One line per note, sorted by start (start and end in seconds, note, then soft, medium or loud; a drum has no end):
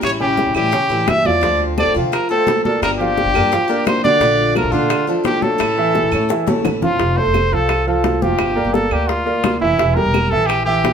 0.00 0.44 A1 medium
0.00 0.54 E3 medium
0.00 0.54 G3 medium
0.00 0.54 C#4 medium
0.00 0.53 E4 medium
0.00 0.14 G4 medium
0.00 high bongo medium
0.00 high conga soft
0.00 claves medium
0.05 0.12 C#5 medium
0.20 0.49 C#3 medium
0.20 0.49 C#4 medium
0.20 0.53 G4 medium
0.20 0.49 C#5 medium
0.20 high bongo soft
0.20 high conga soft
0.37 high bongo medium
0.37 high conga medium
0.46 0.56 A1 medium
0.54 0.72 A2 medium
0.54 0.69 E3 medium
0.54 0.71 G3 medium
0.54 0.71 C#4 medium
0.54 0.71 E4 medium
0.54 0.70 E4 medium
0.54 0.70 G4 medium
0.54 1.11 G4 medium
0.54 high bongo soft
0.54 claves medium
0.71 0.87 C#3 medium
0.71 0.87 C#4 medium
0.71 0.87 C#5 medium
0.71 muted steel-string acoustic guitar stroke medium
0.71 high bongo medium
0.71 high conga soft
0.89 1.05 A2 medium
0.89 1.19 E3 medium
0.89 1.06 G3 medium
0.89 1.07 C#4 medium
0.89 1.06 E4 medium
0.89 1.19 E4 medium
0.89 1.20 G4 medium
0.89 high bongo soft
0.89 high conga soft
1.06 1.23 G2 medium
1.06 1.41 E3 soft
1.06 1.42 G3 soft
1.06 1.42 C#4 medium
1.06 1.28 E5 medium
1.06 high bongo medium
1.06 low bongo medium
1.06 high conga medium
1.06 claves medium
1.25 1.41 E2 medium
1.25 1.40 F3 medium
1.25 1.40 F4 medium
1.25 1.63 D5 medium
1.25 1.40 F5 medium
1.25 high conga medium
1.41 1.84 D2 medium
1.41 1.93 D3 medium
1.41 1.71 F3 medium
1.41 1.94 A3 medium
1.41 1.94 C4 medium
1.41 1.71 F4 medium
1.41 1.94 F4 medium
1.41 1.71 F5 medium
1.41 high bongo medium
1.41 high conga soft
1.60 high conga soft
1.78 1.92 A3 medium
1.78 1.92 A4 medium
1.78 1.92 C5 medium
1.78 1.94 D5 medium
1.78 high bongo medium
1.78 high conga medium
1.78 claves medium
1.86 1.97 D2 medium
1.94 2.12 D3 medium
1.94 2.24 F3 medium
1.94 2.12 A3 medium
1.94 2.12 C4 medium
1.94 2.11 F4 medium
1.94 2.24 F4 medium
1.94 2.24 F5 medium
1.94 high conga soft
2.12 2.29 A#4 medium
2.12 muted steel-string acoustic guitar stroke medium
2.12 high bongo medium
2.12 high conga soft
2.12 claves medium
2.29 2.46 A3 medium
2.29 2.59 A3 medium
2.29 2.47 C4 medium
2.29 2.46 F4 medium
2.29 2.62 A4 medium
2.29 2.59 A4 medium
2.29 2.59 C5 medium
2.29 high conga soft
2.47 2.81 D3 soft
2.47 2.81 A3 soft
2.47 2.82 C4 medium
2.47 2.82 F4 medium
2.47 high bongo medium
2.47 low bongo medium
2.47 high conga medium
2.64 2.80 A4 medium
2.64 2.94 A#4 medium
2.64 2.94 D5 medium
2.64 high conga medium
2.82 3.23 G1 medium
2.82 3.34 D3 medium
2.82 3.36 F3 medium
2.82 3.35 A#3 medium
2.82 3.35 D4 medium
2.82 3.33 G4 medium
2.82 2.90 A#4 medium
2.82 high bongo medium
2.82 high conga soft
2.82 claves medium
2.99 3.28 F3 medium
2.99 3.29 F4 medium
2.99 3.82 G4 medium
2.99 3.29 F5 medium
2.99 high bongo soft
2.99 high conga soft
3.17 high bongo medium
3.17 high conga medium
3.25 3.36 G1 medium
3.34 3.51 G2 medium
3.34 3.51 F3 soft
3.34 3.49 A#3 medium
3.34 3.51 A#3 medium
3.34 3.51 D4 medium
3.34 3.51 G4 medium
3.34 3.49 A#4 medium
3.34 3.49 D5 medium
3.34 high bongo soft
3.34 claves medium
3.52 3.66 F3 medium
3.52 3.66 F4 medium
3.52 3.66 F5 medium
3.52 muted steel-string acoustic guitar stroke medium
3.52 high bongo medium
3.52 high conga soft
3.68 3.84 F3 medium
3.68 3.98 A#3 medium
3.68 3.84 A#3 medium
3.68 3.86 D4 medium
3.68 3.85 G4 medium
3.68 3.98 A#4 medium
3.68 3.98 D5 medium
3.68 high bongo soft
3.68 high conga soft
3.85 4.19 F3 medium
3.85 4.20 A#3 soft
3.85 4.21 D4 medium
3.85 4.21 G4 medium
3.85 4.03 C5 medium
3.85 high bongo medium
3.85 low bongo medium
3.85 high conga medium
3.85 claves medium
4.04 4.18 D3 medium
4.04 4.18 D4 medium
4.04 4.52 D5 medium
4.04 4.18 D5 medium
4.04 high conga medium
4.20 4.62 A#1 medium
4.20 4.49 D3 medium
4.20 4.72 F3 medium
4.20 4.74 A3 medium
4.20 4.49 D4 medium
4.20 4.72 D4 medium
4.20 4.71 F4 medium
4.20 4.50 D5 medium
4.20 high bongo medium
4.20 high conga soft
4.39 high conga soft
4.55 4.70 F3 medium
4.55 4.70 F4 medium
4.55 4.70 A4 medium
4.55 4.74 A#4 medium
4.55 high bongo medium
4.55 high conga medium
4.55 claves medium
4.64 4.73 A#1 medium
4.72 4.89 A#2 medium
4.72 5.02 D3 medium
4.72 4.89 A3 soft
4.72 5.02 D4 medium
4.72 4.89 D4 medium
4.72 4.89 F4 medium
4.72 5.08 F4 medium
4.72 5.02 D5 medium
4.72 high conga soft
4.90 muted steel-string acoustic guitar stroke medium
4.90 high bongo medium
4.90 high conga soft
4.90 claves medium
5.07 5.37 F3 medium
5.07 5.23 A3 medium
5.07 5.24 D4 medium
5.07 5.24 F4 medium
5.07 5.37 F4 medium
5.07 5.37 A4 medium
5.07 high conga soft
5.24 5.58 F3 soft
5.24 5.58 A3 soft
5.24 5.59 D4 medium
5.24 5.60 F4 soft
5.24 5.44 G4 medium
5.24 high bongo medium
5.24 low bongo medium
5.24 high conga medium
5.42 5.71 A3 medium
5.42 6.65 A4 medium
5.42 5.72 A4 medium
5.42 5.72 C#5 medium
5.42 high conga medium
5.58 6.02 A1 medium
5.58 6.11 E3 medium
5.58 6.11 A3 medium
5.58 6.12 C#4 medium
5.58 6.10 E4 medium
5.58 high bongo medium
5.58 high conga soft
5.58 claves medium
5.77 6.06 E3 medium
5.77 6.07 E4 medium
5.77 6.07 E5 medium
5.77 high bongo soft
5.77 high conga soft
5.95 high bongo medium
5.95 high conga medium
6.02 6.13 A1 medium
6.12 6.29 A2 medium
6.12 6.27 A3 medium
6.12 6.28 A3 medium
6.12 6.28 C#4 medium
6.12 6.29 E4 medium
6.12 6.27 A4 medium
6.12 6.27 C#5 medium
6.12 high bongo soft
6.12 claves medium
6.29 6.45 E3 medium
6.29 6.45 E4 medium
6.29 6.45 E5 medium
6.29 muted steel-string acoustic guitar stroke medium
6.29 high bongo medium
6.29 high conga soft
6.47 6.76 A3 medium
6.47 6.64 A3 medium
6.47 6.64 C#4 medium
6.47 6.64 E4 medium
6.47 6.76 A4 medium
6.47 6.77 C#5 medium
6.47 high bongo medium
6.47 high conga loud
6.64 6.80 A1 medium
6.64 6.99 E3 soft
6.64 6.99 A3 medium
6.64 7.00 C#4 soft
6.64 7.00 E4 medium
6.64 low bongo medium
6.64 low conga medium
6.64 claves medium
6.81 6.98 G1 medium
6.81 6.97 F3 medium
6.81 6.97 F4 medium
6.81 7.19 F4 medium
6.81 6.97 F5 medium
6.81 low bongo medium
6.81 low conga medium
6.99 7.16 F1 medium
6.99 7.14 F3 medium
6.99 7.14 F4 medium
6.99 7.15 F5 medium
6.99 high bongo medium
6.99 high conga soft
7.17 7.46 A3 medium
7.17 7.46 A4 medium
7.17 7.55 C5 medium
7.17 7.46 C5 medium
7.17 high conga soft
7.26 7.51 F1 medium
7.34 high bongo medium
7.34 high conga medium
7.34 claves medium
7.52 8.18 C2 medium
7.52 7.81 F3 medium
7.52 7.81 F4 medium
7.52 7.87 A4 medium
7.52 7.81 F5 medium
7.52 high conga soft
7.69 high bongo medium
7.69 high conga soft
7.69 claves medium
7.87 8.16 F3 medium
7.87 8.16 F4 medium
7.87 8.24 A4 medium
7.87 8.16 F5 medium
7.87 high conga soft
8.04 high bongo medium
8.04 low bongo medium
8.04 high conga medium
8.21 8.38 F1 medium
8.21 8.51 F3 medium
8.21 8.51 F4 medium
8.21 8.75 G4 medium
8.21 8.51 F5 medium
8.21 high conga medium
8.38 8.56 G1 medium
8.38 high bongo medium
8.38 high conga soft
8.38 claves medium
8.56 8.85 A#3 medium
8.56 8.85 A#4 medium
8.56 8.85 D5 medium
8.56 high bongo soft
8.56 high conga soft
8.64 8.90 G1 medium
8.74 8.95 A4 medium
8.74 high bongo medium
8.74 high conga medium
8.91 9.58 D2 medium
8.91 9.20 A#3 medium
8.91 9.09 G4 medium
8.91 9.20 A#4 medium
8.91 9.20 D5 medium
8.91 high bongo soft
8.91 claves medium
9.08 9.60 F4 medium
9.08 high bongo medium
9.08 high conga soft
9.26 9.55 A#3 medium
9.26 9.55 A#4 medium
9.26 9.55 D5 medium
9.26 high bongo soft
9.26 high conga soft
9.44 high bongo medium
9.44 low bongo medium
9.44 high conga medium
9.44 claves medium
9.60 9.78 F1 medium
9.60 9.76 E3 medium
9.60 9.97 E4 medium
9.60 9.76 E4 medium
9.60 9.76 E5 medium
9.78 9.96 E1 medium
9.78 9.93 E3 medium
9.78 9.93 E4 medium
9.78 9.94 E5 medium
9.78 high bongo medium
9.78 high conga soft
9.95 10.25 G3 medium
9.95 10.25 G4 medium
9.95 10.32 A#4 medium
9.95 10.26 A#4 medium
9.95 high conga soft
10.05 10.30 E1 medium
10.14 high bongo medium
10.14 high conga medium
10.14 claves medium
10.30 10.93 A#1 medium
10.30 10.60 E3 medium
10.30 10.60 E4 medium
10.30 10.48 A4 medium
10.30 10.61 E5 medium
10.30 high conga soft
10.46 10.64 G4 medium
10.46 high bongo medium
10.46 high conga soft
10.46 claves medium
10.65 10.93 E3 medium
10.65 10.93 E4 medium
10.65 10.93 G4 medium
10.65 10.93 E5 medium
10.65 high conga soft
10.84 high bongo medium
10.84 low bongo medium
10.84 high conga medium